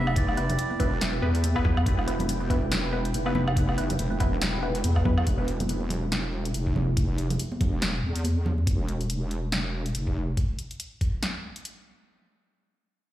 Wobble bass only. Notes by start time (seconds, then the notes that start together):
Already playing: F1
0.80 E1
1.22 E2
1.86 E1
3.14 F1
3.99 E1
4.84 E2
5.27 E1
6.54 F1
7.61 E1
8.03 E2
8.67 E1
9.95 F1